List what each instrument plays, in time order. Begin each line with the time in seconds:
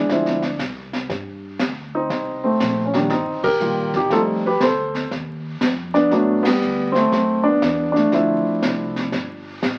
Already playing: grand piano D4
0.09 upright bass D2, grand piano F3 G#3 C4 E4, brush sweep, kick, snare
0.26 snare
0.42 snare
0.59 upright bass C2, kick, snare, hi-hat pedal
0.93 snare
1.09 upright bass G2, brush sweep, kick, snare
1.59 upright bass D2, kick, snare, hi-hat pedal
1.95 grand piano C4 D#4
2.09 upright bass C2, brush sweep, kick, snare
2.44 grand piano A3 C4
2.60 upright bass A#1, kick, snare, hi-hat pedal
2.86 grand piano C#4
2.94 grand piano D#3 G3 A#3 D4, snare
3.10 upright bass G1, grand piano C4 D#4, brush sweep, kick, snare
3.43 grand piano G4 A#4, kick, ride
3.60 upright bass A#1, grand piano D#3 G3 A#3 F4, hi-hat pedal
3.94 grand piano D#4 G4, kick, snare
4.10 upright bass F2, grand piano G3 A3 C4 D#4 F4 A4, brush sweep, kick, snare
4.46 grand piano G4 B4
4.60 upright bass D2, grand piano A4 C5, kick, snare, hi-hat pedal
4.94 snare
5.11 upright bass D#2, brush sweep, kick, snare
5.61 upright bass F2, kick, snare, hi-hat pedal
5.94 grand piano B3 D4, snare
6.11 upright bass G2, grand piano F#3 A3 B3 D4, brush sweep, kick, snare
6.43 grand piano B3, muted upright bass stroke, snare, ride
6.47 grand piano G3
6.62 upright bass D2, hi-hat pedal
6.92 grand piano C4, snare
6.97 grand piano A3
7.12 upright bass F#2, brush sweep, kick, snare
7.44 grand piano D4
7.48 grand piano B3
7.62 upright bass E2, kick, snare, hi-hat pedal
7.92 grand piano D4, snare
7.97 grand piano A3
8.12 upright bass D2, grand piano F3 A3 C4 E4, brush sweep, kick, snare
8.47 muted upright bass stroke
8.62 upright bass C2, kick, snare, hi-hat pedal
8.96 snare
9.12 upright bass G1, brush sweep, kick, snare
9.62 upright bass A1, kick, snare, hi-hat pedal